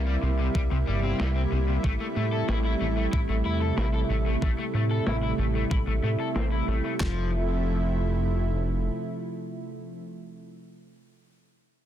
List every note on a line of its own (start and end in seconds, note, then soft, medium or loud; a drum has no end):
0.00 0.17 C2 medium
0.00 1.80 C3 medium
0.00 6.96 G3 medium
0.00 1.80 A#3 medium
0.00 6.96 E4 medium
0.07 0.15 G3 medium
0.23 0.50 C2 medium
0.23 0.28 C3 medium
0.39 0.47 C3 medium
0.55 0.68 C2 medium
0.55 0.60 G3 medium
0.55 kick loud
0.71 0.85 C2 medium
0.71 0.76 C3 medium
0.87 1.14 G1 medium
0.87 0.99 G3 medium
1.03 1.16 C4 medium
1.20 1.46 C2 medium
1.20 1.28 G3 loud
1.20 snare loud
1.36 1.41 C4 medium
1.52 1.79 C2 medium
1.52 1.57 C3 medium
1.68 1.76 C3 medium
1.84 1.97 A1 loud
1.84 6.96 C3 medium
1.84 6.96 A3 medium
1.84 1.92 A3 medium
1.84 kick loud
2.00 2.05 A3 medium
2.16 2.43 A2 medium
2.16 2.24 A3 medium
2.32 2.45 A4 medium
2.48 2.75 A1 medium
2.48 2.57 E4 loud
2.48 snare loud
2.65 2.73 E4 medium
2.81 3.08 A1 medium
2.81 2.86 A3 medium
2.97 3.05 A3 medium
3.13 3.26 A1 medium
3.13 3.18 E4 medium
3.13 kick loud
3.29 3.43 A1 medium
3.29 3.34 A3 medium
3.45 3.72 E2 medium
3.45 3.57 E4 medium
3.61 3.74 A4 medium
3.78 4.04 A1 medium
3.78 3.86 E4 medium
3.78 snare loud
3.94 3.99 A4 medium
4.10 4.37 A1 medium
4.10 4.15 A3 medium
4.26 4.34 A3 medium
4.42 4.55 A1 loud
4.42 4.50 A3 medium
4.42 kick loud
4.59 4.63 A3 medium
4.74 5.01 A2 medium
4.74 4.83 A3 medium
4.91 5.03 A4 medium
5.07 5.33 A1 medium
5.07 5.15 E4 medium
5.07 snare loud
5.23 5.31 E4 medium
5.39 5.66 A1 medium
5.39 5.44 A3 medium
5.55 5.63 A3 medium
5.71 5.85 A1 medium
5.71 5.76 E4 medium
5.71 kick loud
5.87 6.01 A1 medium
5.87 5.92 A3 medium
6.03 6.17 A2 loud
6.03 6.08 A3 medium
6.20 6.28 A4 medium
6.36 6.62 A1 medium
6.36 6.44 C4 medium
6.36 snare loud
6.52 6.64 E4 medium
6.68 6.81 A1 medium
6.68 6.80 A3 medium
6.84 6.92 A3 medium
7.00 8.90 F1 loud
7.00 10.02 C3 medium
7.00 10.02 F3 medium
7.00 7.30 F3 medium
7.00 10.02 A3 medium
7.00 10.02 E4 medium
7.00 kick loud
7.00 snare loud
7.00 clap medium